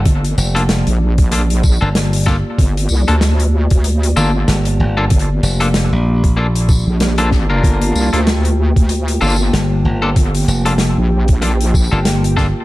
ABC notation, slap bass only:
X:1
M:4/4
L:1/16
Q:"Swing 16ths" 1/4=95
K:Gm
V:1 name="Slap bass" clef=bass
z2 F,,,3 z6 G,,,4 z | z12 G,,,2 G,,,2 | z2 F,,,3 B,,,6 z4 z | z12 G,,,2 G,,,2 |
z2 F,,,3 z6 G,,,4 z |]